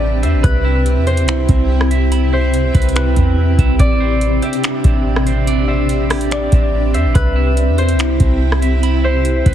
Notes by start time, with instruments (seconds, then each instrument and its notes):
Already playing: 808-style bass A1, ambient pad C3 C4 D4 G4, clean electric guitar C4 D4 G4 C5, synth texture C4 G4 B4 D5, harp D5 E5
0.23 808-style bass E2, clean electric guitar C5, harp E5, closed hi-hat
0.33 808-style bass A1
0.43 808-style bass C2, ambient pad E4, harp B4, synth texture E5 B5, clean electric guitar B5, kick, closed hi-hat
0.65 clean electric guitar E5
0.86 closed hi-hat
0.96 808-style bass E2
1.07 harp C5, clean electric guitar C5, closed hi-hat
1.17 closed hi-hat
1.23 808-style bass C2
1.28 clean electric guitar E4, finger snap, closed hi-hat
1.49 808-style bass C2, clean electric guitar C4, kick, closed hi-hat
1.81 cross-stick
1.91 clean electric guitar E5, closed hi-hat
2.12 clean electric guitar B5, closed hi-hat
2.33 harp C5, clean electric guitar E5
2.54 closed hi-hat
2.75 808-style bass C2, clean electric guitar B4, kick, closed hi-hat
2.82 closed hi-hat
2.89 closed hi-hat
2.96 clean electric guitar E4, harp B4, finger snap, closed hi-hat
3.16 808-style bass E2, clean electric guitar C4, kick, closed hi-hat
3.58 808-style bass C2, clean electric guitar E5, kick, closed hi-hat
3.79 808-style bass A1, ambient pad D4, synth texture G4 D5, clean electric guitar D5, harp D5, kick, closed hi-hat
4.00 clean electric guitar C5
4.21 closed hi-hat
4.42 clean electric guitar G4, harp E5, closed hi-hat
4.53 closed hi-hat
4.63 clean electric guitar D4, finger snap, closed hi-hat
4.84 808-style bass A1, clean electric guitar C4, kick, closed hi-hat
5.16 cross-stick
5.26 clean electric guitar C5, closed hi-hat
5.47 clean electric guitar D5, closed hi-hat
5.68 clean electric guitar C5, harp E5
5.89 closed hi-hat
6.10 clean electric guitar G4, cross-stick, closed hi-hat, open hi-hat
6.21 closed hi-hat
6.31 clean electric guitar D4, harp D5, finger snap, closed hi-hat
6.52 808-style bass A1, clean electric guitar C4, kick, closed hi-hat
6.94 808-style bass E2, clean electric guitar C5, harp E5, closed hi-hat
7.05 808-style bass A1
7.14 808-style bass C2, ambient pad C3 C4 E4 G4, synth texture C4 E5, harp B4, clean electric guitar B5, kick, closed hi-hat
7.36 clean electric guitar E5
7.57 closed hi-hat
7.68 808-style bass E2
7.78 clean electric guitar C5, harp C5, closed hi-hat
7.89 closed hi-hat
7.94 808-style bass C2
7.99 clean electric guitar E4, finger snap, closed hi-hat
8.20 808-style bass C2, clean electric guitar C4, kick, closed hi-hat
8.52 cross-stick
8.62 clean electric guitar E5, closed hi-hat
8.83 clean electric guitar B5, closed hi-hat
9.04 harp C5, clean electric guitar E5
9.25 closed hi-hat
9.46 808-style bass C2, clean electric guitar B4, kick, closed hi-hat